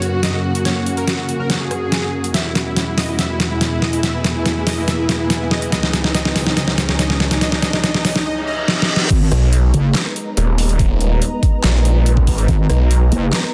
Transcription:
Already playing: string section F#2 C#3 A#3 F#4, ambient pad C#4 F#4 A#4 F#5, riser
0.02 supersaw synth F#4, closed hi-hat
0.13 supersaw synth F#4
0.23 supersaw synth D#5, snare, closed hi-hat
0.34 supersaw synth F#4
0.44 supersaw synth F#4
0.55 supersaw synth F#4, closed hi-hat
0.65 supersaw synth C#5, snare, closed hi-hat
0.76 supersaw synth F#4
0.86 supersaw synth F#4, closed hi-hat
0.97 supersaw synth A#4, closed hi-hat
1.07 supersaw synth F#4, snare, closed hi-hat
1.18 supersaw synth F#4
1.29 supersaw synth F#4, closed hi-hat
1.39 supersaw synth A#4
1.50 supersaw synth F#4, snare, closed hi-hat
1.61 supersaw synth G#4
1.71 cross-stick, closed hi-hat
1.92 snare, closed hi-hat
2.24 closed hi-hat
2.34 string section E2 B2 G#3 E4, ambient pad E4, supersaw synth E5, snare, closed hi-hat
2.45 supersaw synth E4
2.55 snare, closed hi-hat
2.62 ambient pad G#4
2.66 supersaw synth E4
2.77 supersaw synth E4, snare, closed hi-hat
2.87 supersaw synth E4, ambient pad B4 G#5
2.98 supersaw synth D#5, snare, open hi-hat
3.08 supersaw synth E4
3.19 supersaw synth E5, snare, closed hi-hat
3.30 supersaw synth E4
3.40 snare, closed hi-hat
3.51 supersaw synth E4
3.61 supersaw synth E4, snare, closed hi-hat
3.72 supersaw synth E4
3.82 supersaw synth D#5, snare
3.93 supersaw synth E4, closed hi-hat
4.03 supersaw synth E5, snare, closed hi-hat
4.14 supersaw synth E4
4.24 snare, closed hi-hat
4.35 supersaw synth E4
4.46 supersaw synth E4, snare, closed hi-hat
4.56 supersaw synth E4
4.67 supersaw synth D#5, snare, open hi-hat
4.77 supersaw synth E4
4.88 supersaw synth E5, snare, closed hi-hat
4.99 supersaw synth E4
5.09 snare, closed hi-hat
5.20 supersaw synth E4
5.30 supersaw synth E4, snare, closed hi-hat
5.41 supersaw synth E4
5.51 supersaw synth D#5, snare
5.62 supersaw synth E4, closed hi-hat
5.72 string section C#2 C#3 D#4, ambient pad D#4, supersaw synth D#5, snare, closed hi-hat
5.83 supersaw synth D#4, snare
5.93 snare, closed hi-hat
6.04 supersaw synth D#4, snare
6.14 supersaw synth D#5, snare, closed hi-hat
6.25 supersaw synth D#4, snare
6.34 ambient pad C#5, snare, open hi-hat
6.46 supersaw synth D#4, snare
6.57 supersaw synth D#5, snare, closed hi-hat
6.68 supersaw synth D#4, snare
6.78 snare, closed hi-hat
6.89 supersaw synth D#4, snare
6.99 supersaw synth D#5, snare, closed hi-hat
7.10 supersaw synth D#4, snare
7.20 snare
7.31 supersaw synth D#4, snare, closed hi-hat
7.41 supersaw synth D#5, snare, closed hi-hat
7.52 supersaw synth D#4, snare
7.62 supersaw synth D#5, snare, closed hi-hat
7.73 supersaw synth D#4, snare, closed hi-hat
7.84 supersaw synth D#5, snare, closed hi-hat
7.94 supersaw synth D#4, snare
8.05 supersaw synth D#5, snare, open hi-hat
8.16 supersaw synth D#4, snare
8.26 supersaw synth D#5, reverse cymbal
8.37 supersaw synth D#4
8.47 supersaw synth D#5
8.58 supersaw synth D#4
8.68 supersaw synth D#5, snare
8.79 supersaw synth D#4, snare
8.89 supersaw synth D#5
8.96 supersaw synth D#4, snare
9.10 wobble bass G#1, string section G#3 D#4 A#4 B4, ambient pad B3, kick, closed hi-hat, crash
9.22 ambient pad D#5
9.30 detuned saw bass B1, ambient pad A#5, cross-stick, closed hi-hat
9.53 closed hi-hat
9.74 wobble bass F#1, closed hi-hat
9.95 snare, clap, closed hi-hat
10.06 cross-stick
10.16 closed hi-hat
10.37 detuned saw bass D#1, closed hi-hat
10.58 open hi-hat
10.69 closed hi-hat
10.79 kick, closed hi-hat
11.00 detuned saw bass D#1, closed hi-hat
11.22 closed hi-hat
11.43 kick, closed hi-hat
11.64 detuned saw bass A#1, snare, clap, closed hi-hat
11.85 closed hi-hat
12.06 closed hi-hat
12.17 kick
12.23 detuned saw bass A1
12.27 kick, open hi-hat
12.38 closed hi-hat
12.48 wobble bass G#1, kick, closed hi-hat
12.70 detuned saw bass B1, cross-stick, closed hi-hat
12.91 closed hi-hat
13.12 wobble bass F#1, closed hi-hat
13.33 snare, clap, closed hi-hat
13.44 cross-stick

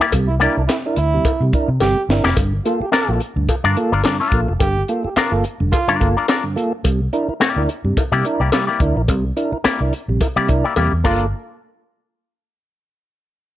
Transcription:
0.01 clean electric guitar A#3 E4 G4 D5, tonewheel organ E4 A#4
0.12 fingered electric bass C2, tonewheel organ C3 G3, kick, closed hi-hat, cowbell
0.27 trombone E4
0.40 clean electric guitar A#3 E4 G4 D5, tonewheel organ D4 E4 A#4, closed hi-hat
0.56 fingered electric bass C2, trombone D4, tonewheel organ E4 A#4
0.67 trombone E4, snare, clap, closed hi-hat, cowbell
0.86 tonewheel organ D4 E4 A#4
0.96 fingered electric bass D2, trombone E4, closed hi-hat
1.14 tonewheel organ C3 G3
1.25 tonewheel organ E4 A#4, kick, closed hi-hat, cowbell
1.41 fingered electric bass C3, tonewheel organ C3 G3
1.53 tonewheel organ D4 E4 A#4, kick, closed hi-hat
1.68 fingered electric bass C3
1.80 fingered electric bass G1, tonewheel organ C3 G3, trombone G4, snare, cowbell
2.09 fingered electric bass G1, tonewheel organ D4 E4 A#4, snare
2.24 fingered electric bass F1, clean electric guitar A#3 E4 G4 D5, tonewheel organ E4 A#4, snare
2.37 fingered electric bass G1, tonewheel organ G2 D3, kick, closed hi-hat, cowbell
2.64 tonewheel organ A#3 F4 A4, trombone F4, closed hi-hat
2.80 tonewheel organ F4 A4, trombone G4, muted fingered electric bass stroke
2.92 clean electric guitar D4 F4 A#4 D5, trombone A#4, snare, clap, closed hi-hat, cowbell
3.09 fingered electric bass A#1, tonewheel organ A#3 F4 A4
3.20 closed hi-hat
3.36 fingered electric bass D2, tonewheel organ G2 D3
3.48 tonewheel organ F4 A4, muted fingered electric bass stroke, kick, closed hi-hat, cowbell
3.64 fingered electric bass G2, tonewheel organ G2 D3, clean electric guitar D4 F4 A#4 D5
3.77 tonewheel organ A#3 F4 A4, closed hi-hat
3.92 fingered electric bass G1, clean electric guitar D4 F4 A#4 D5
4.04 tonewheel organ G2 D3, clean electric guitar D4 F4 A#4 D5, snare, clap, closed hi-hat, cowbell
4.20 clean electric guitar D4 F4 A#4 D5
4.32 fingered electric bass A#1, tonewheel organ A#3 F4 A4, kick, closed hi-hat
4.48 fingered electric bass F1, tonewheel organ F4 A4
4.60 fingered electric bass G1, tonewheel organ G2 D3, trombone G4, kick, closed hi-hat, cowbell
4.88 tonewheel organ A#3 F4 A4, closed hi-hat
5.04 tonewheel organ F4 A4, trombone G4, muted fingered electric bass stroke
5.16 clean electric guitar D4 F4 A#4 D5, trombone A#4, muted fingered electric bass stroke, snare, clap, closed hi-hat, cowbell
5.31 fingered electric bass G1, tonewheel organ A#3 F4 A4
5.44 closed hi-hat
5.60 fingered electric bass F1, tonewheel organ G2 D3
5.72 tonewheel organ F4 A4, trombone F4, kick, closed hi-hat, cowbell
5.88 tonewheel organ G2 D3, clean electric guitar D4 F4 A#4 D5, muted fingered electric bass stroke
6.00 fingered electric bass G1, tonewheel organ A#3 F4 A4, kick, closed hi-hat
6.17 clean electric guitar D4 F4 A#4 D5
6.28 clean electric guitar D4 F4 A#4 D5, tonewheel organ F4 A4, snare, clap, closed hi-hat, cowbell
6.44 tonewheel organ G2 D3
6.56 tonewheel organ A#3 F4 A4, closed hi-hat
6.84 fingered electric bass C2, tonewheel organ C3 G3, kick, closed hi-hat, cowbell
7.13 tonewheel organ D4 E4 A#4, closed hi-hat
7.28 tonewheel organ E4 A#4, muted fingered electric bass stroke
7.40 clean electric guitar A#3 E4 G4 D5, snare, clap, closed hi-hat, cowbell
7.56 fingered electric bass D2, tonewheel organ D4 E4 A#4
7.69 closed hi-hat
7.84 fingered electric bass G2, tonewheel organ C3 G3
7.97 tonewheel organ E4 A#4, muted fingered electric bass stroke, kick, closed hi-hat, cowbell
8.12 fingered electric bass C3, tonewheel organ C3 G3, clean electric guitar A#3 E4 G4 D5
8.25 tonewheel organ D4 E4 A#4, closed hi-hat
8.40 fingered electric bass C2, clean electric guitar A#3 E4 G4 D5
8.52 tonewheel organ C3 G3, clean electric guitar A#3 E4 G4 D5, snare, clap, closed hi-hat, cowbell
8.67 clean electric guitar A#3 E4 G4 D5
8.80 fingered electric bass D2, tonewheel organ D4 E4 A#4, kick, closed hi-hat
8.96 fingered electric bass A#1, tonewheel organ E4 A#4
9.08 fingered electric bass C2, tonewheel organ C3 G3, kick, closed hi-hat, cowbell
9.37 tonewheel organ D4 E4 A#4, closed hi-hat
9.52 tonewheel organ E4 A#4, muted fingered electric bass stroke
9.64 clean electric guitar A#3 E4 G4 D5, muted fingered electric bass stroke, snare, clap, closed hi-hat, cowbell
9.81 fingered electric bass C2, tonewheel organ D4 E4 A#4
9.93 closed hi-hat
10.08 fingered electric bass A#1, tonewheel organ C3 G3
10.21 tonewheel organ E4 A#4, kick, closed hi-hat, cowbell
10.36 tonewheel organ C3 G3, clean electric guitar A#3 E4 G4 D5, muted fingered electric bass stroke
10.48 fingered electric bass C2, tonewheel organ D4 E4 A#4, kick, closed hi-hat
10.64 clean electric guitar A#3 E4 G4 D5
10.76 fingered electric bass E2, tonewheel organ C3 G3, clean electric guitar A#3 E4 G4 D5, cowbell
10.93 fingered electric bass E2
11.04 fingered electric bass G1, tonewheel organ A#3 F4 A4, clean electric guitar D4 F4 A#4 D5, trombone F4, kick, crash, cowbell

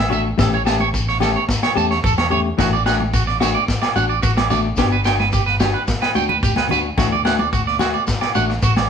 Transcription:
Already playing: fingered electric bass A1
0.00 low agogo
0.10 clean electric guitar A3 D4 F#4 E5, low conga, shekere
0.38 fingered electric bass A1, clean electric guitar E3 A3 C#4 G4 A4, kick, snare, low agogo, shekere
0.53 clean electric guitar C#5, shekere
0.65 clean electric guitar A3 C#4 G4 A5, snare, low agogo, shekere
0.80 clean electric guitar C#5, high conga
0.94 kick, shekere
1.08 clean electric guitar C#5, snare
1.20 clean electric guitar A3 C#4 G4 A4, snare, low conga, low agogo, shekere
1.36 clean electric guitar C#5
1.49 kick, snare, shekere
1.63 clean electric guitar C#5, snare, low agogo
1.76 fingered electric bass E2, clean electric guitar A3 C#4 G4 A5, high conga, shekere
1.90 clean electric guitar C#5, snare, shekere
2.04 fingered electric bass E2, clean electric guitar A4, kick, shekere
2.18 clean electric guitar C#5, snare, high conga, low agogo
2.31 clean electric guitar A3 C#4 G4 C#5, low conga
2.58 fingered electric bass A1, clean electric guitar E3 A3 D4 F#4, kick, snare, low agogo, shekere
2.73 clean electric guitar D5, shekere
2.86 clean electric guitar A3 D4 F#4 F#5, snare, low agogo, shekere
3.00 muted clean electric guitar stroke, high conga
3.13 clean electric guitar F#4, kick, shekere
3.27 clean electric guitar D5, snare
3.40 clean electric guitar A3 D4 F#4, snare, low conga, low agogo, shekere
3.55 clean electric guitar D5
3.68 kick, snare, shekere
3.82 clean electric guitar D5, snare, low agogo
3.96 fingered electric bass A1, clean electric guitar D4 F#4 F#5, high conga, shekere
4.09 clean electric guitar D5, shekere
4.22 fingered electric bass A1, clean electric guitar F#4, kick, shekere
4.37 clean electric guitar D5, snare, high conga, low agogo
4.50 clean electric guitar A3 D4 F#4 D5, snare, low conga, shekere
4.76 fingered electric bass G1, clean electric guitar B3 D4 F#4 G4, kick, snare, low agogo, shekere
4.91 clean electric guitar B4, shekere
5.04 clean electric guitar D4 F#4 G5, snare, low agogo, shekere
5.18 clean electric guitar B4, snare, high conga, shekere
5.33 clean electric guitar G4, kick, shekere
5.46 clean electric guitar B4, snare, shekere
5.60 clean electric guitar D4 F#4 G4, snare, high conga, low conga, low agogo, shekere
5.74 clean electric guitar B4, shekere
5.88 kick, snare, shekere
6.02 clean electric guitar B4, snare, low agogo, shekere
6.15 fingered electric bass D2, clean electric guitar D4 F#4 G5, high conga, shekere
6.29 clean electric guitar B4, low conga, shekere
6.43 fingered electric bass D2, clean electric guitar G4, kick, shekere
6.56 clean electric guitar B4, snare, high conga, low agogo, shekere
6.69 clean electric guitar D4 F#4 B4, snare, low conga, shekere
6.97 fingered electric bass D2, clean electric guitar E3 A3 D4 F#4, kick, snare, low agogo, shekere
7.12 clean electric guitar D5
7.25 clean electric guitar A3 D4 F#4 F#5, snare, low agogo, shekere
7.39 clean electric guitar D5, high conga
7.53 clean electric guitar F#4, kick, shekere
7.67 clean electric guitar D5, snare
7.79 clean electric guitar A3 F#4, snare, low conga, low agogo, shekere
7.94 clean electric guitar D5
8.07 kick, snare, shekere
8.21 clean electric guitar D5, snare, low agogo
8.35 fingered electric bass A1, clean electric guitar A3 D4 F#4 F#5, high conga, shekere
8.49 muted clean electric guitar stroke, snare, shekere
8.62 fingered electric bass A1, clean electric guitar F#4, kick, shekere
8.76 clean electric guitar D5, snare, high conga, low agogo

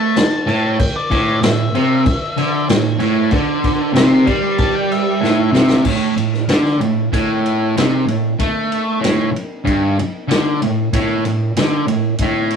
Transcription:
Already playing: distorted electric guitar A3, lead electric guitar A5
0.16 muted distorted electric guitar stroke, snare, crash
0.47 distorted electric guitar A2, crash
0.79 lead electric guitar G5, kick, crash
0.96 lead electric guitar D5
1.11 distorted electric guitar A2, kick, crash
1.41 distorted electric guitar A2, lead electric guitar E5, snare, crash
1.74 distorted electric guitar C3, crash
2.06 muted distorted electric guitar stroke, kick, crash
2.37 distorted electric guitar D3, crash
2.69 distorted electric guitar A2, snare, crash
2.99 distorted electric guitar A2, crash
3.31 distorted electric guitar D3, kick, crash
3.64 kick, crash
3.93 distorted electric guitar C3, lead electric guitar C6, snare, crash
4.26 distorted electric guitar G3, kick, crash
4.58 lead electric guitar A5, kick, crash
4.75 lead electric guitar G5
4.92 lead electric guitar E5, crash
5.21 distorted electric guitar A2, snare
5.52 distorted electric guitar C3, snare
5.69 snare
5.85 distorted electric guitar A2, kick, crash
6.16 distorted electric guitar A2, ride
6.34 snare
6.49 distorted electric guitar D3, snare, ride
6.65 snare
6.81 distorted electric guitar A2, ride
7.13 distorted electric guitar A2, kick, ride
7.46 ride
7.77 distorted electric guitar C3, snare, ride
8.06 distorted electric guitar A2, ride
8.39 distorted electric guitar A3, kick, ride
8.72 ride
9.01 distorted electric guitar A2, snare, ride
9.31 muted distorted electric guitar stroke
9.36 ride
9.65 distorted electric guitar G2, kick, ride
9.99 muted distorted electric guitar stroke, ride
10.28 distorted electric guitar D3, snare, ride
10.62 distorted electric guitar A2, ride
10.93 distorted electric guitar A2, kick, ride
11.25 distorted electric guitar A2, ride
11.57 distorted electric guitar D3, snare, ride
11.87 distorted electric guitar A2, ride
12.19 distorted electric guitar A2, kick, ride
12.50 ride

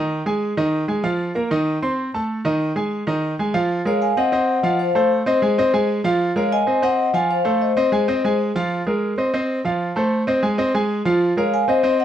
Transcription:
Already playing: grand piano D#3 D#4 D#5
0.26 grand piano G#3 G#4 G#5
0.57 grand piano D#3 D#4 D#5
0.88 grand piano G#3 G#4 G#5
1.03 grand piano F3 F4 F5
1.35 grand piano A#3 A#4 A#5
1.51 grand piano D#3 D#4 D#5
1.82 grand piano C4 C5 C6
2.14 grand piano A3 A4 A5
2.45 grand piano D#3 D#4 D#5
2.76 grand piano G#3 G#4 G#5
3.07 grand piano D#3 D#4 D#5
3.39 grand piano G#3 G#4 G#5
3.54 grand piano F3 F4 F5
3.85 grand piano G#3 G#4 A#4, vibraphone C#5 F5
4.02 vibraphone F5 G#5
4.17 grand piano C4 C5 D#5, vibraphone D#5 F#5
4.32 grand piano C4 C5 D#5
4.63 grand piano F3 F4 F5
4.79 vibraphone C5 F5
4.95 grand piano A3 A4 C5
5.26 grand piano C4 C5 D#5, vibraphone C5 D#5
5.42 grand piano G#3 G#4 G#5
5.58 grand piano C4 C5 D#5
5.73 grand piano G#3 G#4 G#5
6.04 grand piano F3 F4 F5
6.36 grand piano G#3 G#4 A#4, vibraphone C#5 F5
6.52 vibraphone D#5 G#5
6.67 grand piano C4 C5 D#5
6.82 grand piano C4 C5 D#5, vibraphone D#5 F#5
7.14 grand piano F3 F4 F5, vibraphone F5 G#5
7.31 vibraphone C5 F5
7.45 grand piano A3 A4 C5
7.62 vibraphone C5 D#5
7.77 grand piano C4 C5 D#5
7.92 grand piano G#3 G#4 G#5
8.08 grand piano C4 C5 D#5
8.24 grand piano G#3 G#4 G#5
8.55 grand piano F3 F4 F5
8.87 grand piano G#3 G#4 A#4
9.18 grand piano C4 C5 D#5
9.34 grand piano C4 C5 D#5
9.65 grand piano F3 F4 F5
9.96 grand piano A3 A4 C5
10.27 grand piano C4 C5 D#5
10.43 grand piano G#3 G#4 G#5
10.58 grand piano C4 C5 D#5
10.74 grand piano G#3 G#4 G#5
11.05 grand piano F3 F4 F5
11.37 grand piano G#3 G#4 A#4, vibraphone C#5 F5
11.54 vibraphone F5 G#5
11.68 grand piano C4 C5 D#5, vibraphone C5 D#5
11.83 grand piano C4 C5 D#5
12.00 vibraphone D#5 F#5

